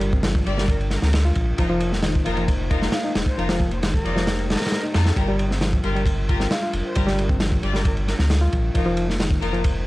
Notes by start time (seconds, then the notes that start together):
Already playing: G1 G3 D4 F4 A#4
0.01 ride
0.13 C4, kick
0.23 F3, snare, ride
0.35 kick
0.46 G1 G3 F4 G4 D5, ride
0.58 G3 A#4, snare
0.68 A#4, kick, ride
0.81 ride
0.91 A#4, snare, ride
1.02 D2 C4 A#4, snare
1.13 snare, ride
1.25 F4
1.35 A#1, kick, ride
1.58 F1 F3 A#3 D#4 F4 A#4 C5, kick, ride
1.70 F3
1.80 ride
1.92 A#3, snare
2.03 D#3, snare, ride
2.15 kick
2.25 F1 F3 D#4 F4 A#4, ride
2.37 F3, ride
2.48 kick, ride
2.70 D#4 F4 A#4, kick, ride
2.82 A#3, snare
2.92 F5, snare, ride
3.04 D#4
3.15 D#1, snare, ride
3.26 C5, kick
3.37 F1 F3 D#4 F4 G4 A#4, ride
3.49 F3, snare, ride
3.60 kick
3.71 A#3 C5, ride
3.82 D#3 C5, snare, ride
3.93 A#4, kick
4.05 F1 F3 D#4 F4 D5, ride
4.16 F3, snare
4.27 snare, ride
4.39 ride
4.49 A#4, snare, ride
4.56 snare, ride
4.61 A#3, snare, ride
4.66 snare, ride
4.72 snare, ride
4.83 D#4
4.94 F2 D#4 F4 A4, snare, ride
5.05 snare, ride
5.16 G1 G3 D4 F4 G4 A#4, kick, ride
5.28 G3
5.39 ride
5.51 C4, snare
5.61 F3, snare, ride
5.73 kick
5.84 G1 G3 F4 G4 A#4, ride
5.95 G3, ride
6.06 kick, ride
6.29 F4 G4 A#4, kick, ride
6.40 C4, snare
6.50 F5, snare, ride
6.63 F4
6.73 F1, ride
6.85 C5
6.95 G1 G3 F4 G4 A#4, kick, ride
7.07 G3, snare
7.19 ride
7.29 C4, kick
7.40 F3, snare, ride
7.52 kick
7.63 G1 G3 F4 G4 D5, ride
7.74 G3 A#4, snare
7.85 A#4, kick, ride
7.97 ride
8.07 A#4, snare, ride
8.19 D2 C4 A#4, snare
8.30 snare, ride
8.41 F4
8.53 A#1, kick, ride
8.74 F1 F3 A#3 D#4 F4 A#4 C5, kick, ride
8.86 F3
8.97 ride
9.08 A#3, snare
9.19 D#3, snare, ride
9.31 kick
9.42 F1 F3 D#4 F4 A#4, ride
9.53 F3, ride
9.64 kick, ride